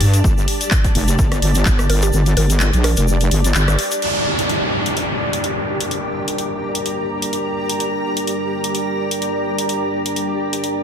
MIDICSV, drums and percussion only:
0, 0, Header, 1, 2, 480
1, 0, Start_track
1, 0, Key_signature, -2, "minor"
1, 0, Tempo, 472441
1, 247, Time_signature, 4, 2, 24, 8
1, 11005, End_track
2, 0, Start_track
2, 0, Title_t, "Drums"
2, 6, Note_on_c, 9, 46, 89
2, 107, Note_off_c, 9, 46, 0
2, 138, Note_on_c, 9, 42, 62
2, 139, Note_on_c, 9, 82, 80
2, 239, Note_off_c, 9, 42, 0
2, 241, Note_off_c, 9, 82, 0
2, 246, Note_on_c, 9, 36, 113
2, 252, Note_on_c, 9, 82, 56
2, 348, Note_off_c, 9, 36, 0
2, 354, Note_off_c, 9, 82, 0
2, 384, Note_on_c, 9, 82, 34
2, 486, Note_off_c, 9, 82, 0
2, 486, Note_on_c, 9, 46, 98
2, 587, Note_off_c, 9, 46, 0
2, 618, Note_on_c, 9, 42, 69
2, 622, Note_on_c, 9, 82, 80
2, 720, Note_off_c, 9, 42, 0
2, 720, Note_on_c, 9, 39, 108
2, 724, Note_off_c, 9, 82, 0
2, 726, Note_on_c, 9, 36, 110
2, 727, Note_on_c, 9, 82, 57
2, 822, Note_off_c, 9, 39, 0
2, 828, Note_off_c, 9, 36, 0
2, 829, Note_off_c, 9, 82, 0
2, 858, Note_on_c, 9, 36, 58
2, 858, Note_on_c, 9, 42, 52
2, 863, Note_on_c, 9, 82, 36
2, 960, Note_off_c, 9, 36, 0
2, 960, Note_off_c, 9, 42, 0
2, 964, Note_off_c, 9, 82, 0
2, 966, Note_on_c, 9, 46, 83
2, 1068, Note_off_c, 9, 46, 0
2, 1098, Note_on_c, 9, 42, 69
2, 1098, Note_on_c, 9, 82, 69
2, 1200, Note_off_c, 9, 42, 0
2, 1200, Note_off_c, 9, 82, 0
2, 1205, Note_on_c, 9, 82, 58
2, 1206, Note_on_c, 9, 36, 105
2, 1306, Note_off_c, 9, 82, 0
2, 1308, Note_off_c, 9, 36, 0
2, 1338, Note_on_c, 9, 37, 60
2, 1338, Note_on_c, 9, 42, 53
2, 1348, Note_on_c, 9, 82, 36
2, 1440, Note_off_c, 9, 37, 0
2, 1440, Note_off_c, 9, 42, 0
2, 1446, Note_on_c, 9, 46, 102
2, 1450, Note_off_c, 9, 82, 0
2, 1548, Note_off_c, 9, 46, 0
2, 1571, Note_on_c, 9, 82, 66
2, 1578, Note_on_c, 9, 42, 67
2, 1673, Note_off_c, 9, 82, 0
2, 1680, Note_off_c, 9, 42, 0
2, 1681, Note_on_c, 9, 39, 106
2, 1686, Note_on_c, 9, 36, 109
2, 1689, Note_on_c, 9, 82, 60
2, 1782, Note_off_c, 9, 39, 0
2, 1788, Note_off_c, 9, 36, 0
2, 1791, Note_off_c, 9, 82, 0
2, 1818, Note_on_c, 9, 37, 78
2, 1818, Note_on_c, 9, 42, 35
2, 1821, Note_on_c, 9, 82, 33
2, 1920, Note_off_c, 9, 37, 0
2, 1920, Note_off_c, 9, 42, 0
2, 1923, Note_off_c, 9, 82, 0
2, 1926, Note_on_c, 9, 46, 84
2, 2028, Note_off_c, 9, 46, 0
2, 2053, Note_on_c, 9, 82, 71
2, 2058, Note_on_c, 9, 42, 67
2, 2154, Note_off_c, 9, 82, 0
2, 2160, Note_off_c, 9, 42, 0
2, 2163, Note_on_c, 9, 82, 60
2, 2264, Note_off_c, 9, 82, 0
2, 2297, Note_on_c, 9, 82, 36
2, 2298, Note_on_c, 9, 42, 39
2, 2398, Note_off_c, 9, 82, 0
2, 2400, Note_off_c, 9, 42, 0
2, 2406, Note_on_c, 9, 46, 99
2, 2508, Note_off_c, 9, 46, 0
2, 2538, Note_on_c, 9, 42, 67
2, 2541, Note_on_c, 9, 82, 74
2, 2640, Note_off_c, 9, 42, 0
2, 2641, Note_on_c, 9, 39, 114
2, 2643, Note_off_c, 9, 82, 0
2, 2644, Note_on_c, 9, 82, 66
2, 2743, Note_off_c, 9, 39, 0
2, 2745, Note_off_c, 9, 82, 0
2, 2777, Note_on_c, 9, 82, 34
2, 2779, Note_on_c, 9, 42, 53
2, 2878, Note_off_c, 9, 82, 0
2, 2880, Note_off_c, 9, 42, 0
2, 2887, Note_on_c, 9, 37, 58
2, 2887, Note_on_c, 9, 46, 84
2, 2988, Note_off_c, 9, 37, 0
2, 2988, Note_off_c, 9, 46, 0
2, 3016, Note_on_c, 9, 82, 69
2, 3019, Note_on_c, 9, 42, 69
2, 3118, Note_off_c, 9, 82, 0
2, 3120, Note_off_c, 9, 42, 0
2, 3127, Note_on_c, 9, 82, 66
2, 3228, Note_off_c, 9, 82, 0
2, 3258, Note_on_c, 9, 82, 37
2, 3259, Note_on_c, 9, 42, 54
2, 3359, Note_off_c, 9, 82, 0
2, 3360, Note_off_c, 9, 42, 0
2, 3367, Note_on_c, 9, 46, 105
2, 3468, Note_off_c, 9, 46, 0
2, 3499, Note_on_c, 9, 42, 66
2, 3507, Note_on_c, 9, 82, 77
2, 3601, Note_off_c, 9, 42, 0
2, 3601, Note_on_c, 9, 39, 115
2, 3606, Note_off_c, 9, 82, 0
2, 3606, Note_on_c, 9, 82, 62
2, 3703, Note_off_c, 9, 39, 0
2, 3708, Note_off_c, 9, 82, 0
2, 3739, Note_on_c, 9, 37, 78
2, 3739, Note_on_c, 9, 42, 37
2, 3743, Note_on_c, 9, 82, 38
2, 3840, Note_off_c, 9, 37, 0
2, 3840, Note_off_c, 9, 42, 0
2, 3845, Note_off_c, 9, 82, 0
2, 3847, Note_on_c, 9, 46, 87
2, 3948, Note_off_c, 9, 46, 0
2, 3976, Note_on_c, 9, 82, 75
2, 3979, Note_on_c, 9, 42, 69
2, 4078, Note_off_c, 9, 82, 0
2, 4080, Note_off_c, 9, 42, 0
2, 4087, Note_on_c, 9, 42, 47
2, 4087, Note_on_c, 9, 49, 72
2, 4188, Note_off_c, 9, 42, 0
2, 4188, Note_off_c, 9, 49, 0
2, 4459, Note_on_c, 9, 42, 59
2, 4560, Note_off_c, 9, 42, 0
2, 4566, Note_on_c, 9, 42, 46
2, 4668, Note_off_c, 9, 42, 0
2, 4938, Note_on_c, 9, 42, 60
2, 5040, Note_off_c, 9, 42, 0
2, 5046, Note_on_c, 9, 42, 49
2, 5148, Note_off_c, 9, 42, 0
2, 5418, Note_on_c, 9, 42, 60
2, 5519, Note_off_c, 9, 42, 0
2, 5526, Note_on_c, 9, 42, 48
2, 5628, Note_off_c, 9, 42, 0
2, 5898, Note_on_c, 9, 42, 58
2, 6000, Note_off_c, 9, 42, 0
2, 6006, Note_on_c, 9, 42, 46
2, 6108, Note_off_c, 9, 42, 0
2, 6379, Note_on_c, 9, 42, 57
2, 6480, Note_off_c, 9, 42, 0
2, 6486, Note_on_c, 9, 42, 45
2, 6588, Note_off_c, 9, 42, 0
2, 6858, Note_on_c, 9, 42, 60
2, 6960, Note_off_c, 9, 42, 0
2, 6967, Note_on_c, 9, 42, 47
2, 7068, Note_off_c, 9, 42, 0
2, 7339, Note_on_c, 9, 42, 56
2, 7440, Note_off_c, 9, 42, 0
2, 7446, Note_on_c, 9, 42, 45
2, 7548, Note_off_c, 9, 42, 0
2, 7818, Note_on_c, 9, 42, 60
2, 7920, Note_off_c, 9, 42, 0
2, 7926, Note_on_c, 9, 42, 46
2, 8028, Note_off_c, 9, 42, 0
2, 8298, Note_on_c, 9, 42, 57
2, 8400, Note_off_c, 9, 42, 0
2, 8407, Note_on_c, 9, 42, 44
2, 8508, Note_off_c, 9, 42, 0
2, 8779, Note_on_c, 9, 42, 56
2, 8880, Note_off_c, 9, 42, 0
2, 8887, Note_on_c, 9, 42, 46
2, 8988, Note_off_c, 9, 42, 0
2, 9259, Note_on_c, 9, 42, 57
2, 9360, Note_off_c, 9, 42, 0
2, 9366, Note_on_c, 9, 42, 44
2, 9468, Note_off_c, 9, 42, 0
2, 9738, Note_on_c, 9, 42, 56
2, 9840, Note_off_c, 9, 42, 0
2, 9847, Note_on_c, 9, 42, 46
2, 9948, Note_off_c, 9, 42, 0
2, 10218, Note_on_c, 9, 42, 55
2, 10320, Note_off_c, 9, 42, 0
2, 10327, Note_on_c, 9, 42, 44
2, 10428, Note_off_c, 9, 42, 0
2, 10698, Note_on_c, 9, 42, 56
2, 10800, Note_off_c, 9, 42, 0
2, 10807, Note_on_c, 9, 42, 45
2, 10908, Note_off_c, 9, 42, 0
2, 11005, End_track
0, 0, End_of_file